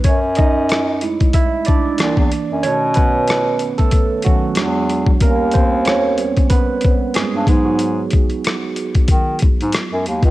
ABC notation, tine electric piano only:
X:1
M:4/4
L:1/16
Q:"Swing 16ths" 1/4=93
K:G#phr
V:1 name="Tine electric piano"
[Cc]2 [Dd]6 [Ee]2 [=D=d]6 | [Cc]2 [B,B]4- [B,B] [A,A]3 [F,F]6 | [^A,^A]2 [^B,^B]2 [Cc]4 [=B,=B]4 [G,G]3 [F,F]- | [F,F]12 z4 |]
V:2 name="Tine electric piano"
z6 [G,A,E]2 z4 [E,_B,=D]4 | [D,A,]6 z4 [D,A,C]2 [F,G,=D]2 z2 | [=G,B,C]2 z4 [G,B,C]2 z6 [F,B,D]2 | z16 |]